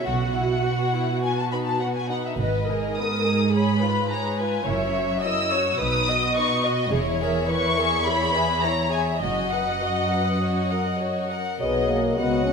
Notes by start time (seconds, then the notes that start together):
0.06 B1 B2 F#4 F#5
0.35 E4
0.65 F#4
0.93 E4
1.23 B3 F#4 G#5
1.39 A5
1.52 D#4 B4 B5
1.66 A5
1.80 B3 F#4 F#5
1.95 G#5
2.09 D#4 B4 F#5
2.25 E5
2.38 G#1 G#2 B3 B4 D#5
2.68 D#4 G#4 A#4
2.97 B3 B4 D#6
3.25 D#4 G#4
3.53 G#4 C#5 B5
3.81 F4 B4
4.10 G#4 C#5 A#5
4.39 F4 B4 G#5
4.66 F#1 F#2 E4 A#4 C#5 E5
4.95 F#4 C#5
5.22 E4 A#4 D#5 E6
5.51 F#4 C#5
5.79 B1 B2 D#4 B4 D#6
6.07 F#4 D#5
6.36 D#4 B4 C#6
6.64 F#4 D#5
6.92 E1 E2 E4 G#4 C#5
7.20 G#4 A#4 E5
7.48 E4 B4 C#5 C#6
7.77 G#4 A#4 E5
8.05 E4 G#4 C#5 B5
8.34 G#4 B4 E5
8.62 E4 C#5 A#5
8.91 G#4 E5 G#5
9.21 F#1 F#2 F#4 D#5 F#5
9.53 B4 F#5
9.83 F#4 D#5
10.12 B4 F#5
10.42 F#4 C#5
10.71 A#4 F#5
10.99 F#4 C#5
11.28 A#4 F#5
11.59 B1 F#3 B3 G#4 D#5 F#5
11.89 A#3
12.17 C#2 F#3 B3 F#4 D#5 F#5
12.46 C#4